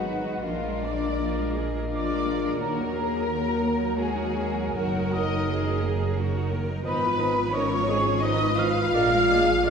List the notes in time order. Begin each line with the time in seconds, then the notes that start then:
Already playing: G#1 F#3 G#3 D#4 F#4 B4 F#5
0.04 D#3 B3
0.23 G#3 D#4
0.42 A#1 F3 A#3 D4 F4 A#4 F5
0.65 G#3 D4
0.83 F3 A#3 D4 D5 D6
1.04 G#3 D4
1.21 F3 A#3 F4
1.38 G#3 D4
1.55 F3 A#3 G#4
1.75 G#3 D4
1.90 F3 A#3 D4 F4 D5 D6
2.09 G#3 D4
2.25 F3 A#3
2.43 G#3 D4
2.59 D#2 D#3 F#3 A#3 F#4 A#4 A#5
2.77 F#3 D#4
2.94 D#3 A#3 G#4
3.13 F#3 D#4
3.29 D#3 A#3 A#4
3.46 F#3 D#4
3.64 D#3 A#3
3.81 F#3 D#4
3.97 D#3 G#3 A#3 F#4 G#4 G#5
4.16 F#3 D#4
4.35 D#3 A#3
4.54 F#3 D#4
4.74 F#1 D#3 F#3 A#3 F#4 A#4 F#5
4.94 F#3 D#4
5.13 D#3 A#3 D#4 D#5 D#6
5.33 F#3 D#4
5.51 D#3 A#3 G#4
5.68 F#3 D#4
5.84 D#3 A#3
6.01 F#3 D#4
6.18 D#3 A#3 F#4
6.35 F#3 D#4
6.51 D#3 A#3 A#4
6.69 F#3 D#4
6.84 G#1 D#3 F3 B3 D#4 B4 D#5 B5
7.03 F3 F4
7.17 D#3 F3 D#4 D#5
7.36 F3 F4
7.52 D#3 F3 C#4 D#4 A#4 C#5 D#5 C#6
7.71 F3 F4
7.88 D#3 F3 D#4 G#4 D#5
8.06 F3 F4
8.21 D#3 F3 D#4 B4 D#5 D#6
8.41 F3 F4
8.57 D#3 F3 D#4 F4 D#5 F5 F6
8.77 F3 F4
8.94 A#1 G#3 A#3 D4 A#4 D5
9.12 G#3 F4
9.29 G#3 A#3 D4 G#4 D5
9.47 G#3 F4
9.64 G#3 A#3 D4 A#4 D5